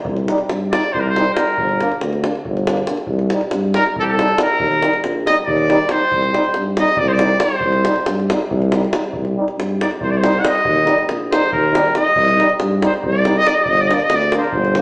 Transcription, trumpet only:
0.72 0.95 D5 medium
0.93 1.02 C5 medium
1.00 1.10 A#4 medium
1.09 1.33 C5 medium
1.34 1.96 A#4 medium
3.75 3.84 A#4 loud
4.00 4.11 G4 medium
4.00 4.03 A4 loud
4.09 4.39 A4 medium
4.43 5.01 A#4 medium
5.26 5.36 D#5 medium
5.45 5.93 D5 medium
5.91 6.55 C5 medium
6.79 7.00 D#5 medium
6.99 7.10 D5 medium
7.08 7.14 C5 medium
7.13 7.42 D5 loud
7.41 8.06 C5 medium
9.82 9.91 D5 medium
10.02 10.12 C5 medium
10.11 10.20 D5 medium
10.18 10.41 C5 medium
10.40 10.48 F#5 medium
10.47 11.10 D#5 loud
11.32 11.51 C5 medium
11.52 11.92 A#4 medium
11.97 12.56 D#5 medium
12.86 12.94 C5 medium
13.08 13.39 D5 medium
13.38 13.49 D#5 loud
13.47 13.56 D5 medium
13.54 13.65 D#5 medium
13.63 13.71 D5 medium
13.70 13.82 D#5 medium
13.81 13.89 D5 medium
13.87 13.95 D#5 medium
13.94 14.05 D5 medium
14.03 14.17 D#5 medium
14.15 14.36 D5 loud
14.37 14.52 A#4 medium
14.37 14.41 C5 medium
14.50 14.77 C5 medium

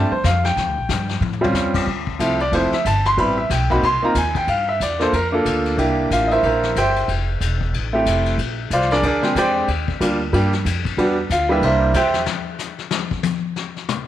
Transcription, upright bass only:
0.00 0.10 G2 medium
0.11 muted upright bass stroke soft
0.24 0.56 F2 loud
0.56 0.67 E2 medium
0.67 0.77 D2 medium
0.78 0.88 A#1 medium
0.89 1.20 G2 medium
1.21 1.53 A2 medium
1.53 1.86 F2 loud
1.86 2.19 D2 medium
2.19 2.51 C2 medium
2.52 2.71 F1 medium
2.72 muted upright bass stroke soft
2.85 3.17 G1 medium
3.17 3.49 A1 medium
3.50 3.82 B1 medium
3.82 4.01 C2 medium
4.03 muted upright bass stroke soft
4.15 4.47 D#2 medium
4.47 4.79 G2 medium
4.80 5.12 E2 medium
5.13 5.44 F2 medium
5.45 5.77 D2 loud
5.77 6.09 C2 medium
6.10 6.42 A1 medium
6.43 6.75 A#1 medium
6.76 7.07 G1 medium
7.08 7.40 F1 medium
7.41 7.72 E1 medium
7.73 8.05 A1 medium
8.05 8.37 F1 medium
8.38 8.69 A#1 medium
8.70 9.02 C2 medium
9.03 9.35 D2 medium
9.35 9.67 E2 medium
9.68 9.99 D#2 medium
10.00 10.32 D2 medium
10.33 10.64 G2 medium
10.65 10.97 F2 loud
10.97 11.29 E2 medium
11.30 11.61 D2 medium
11.62 11.93 C2 medium
11.94 12.26 E2 loud

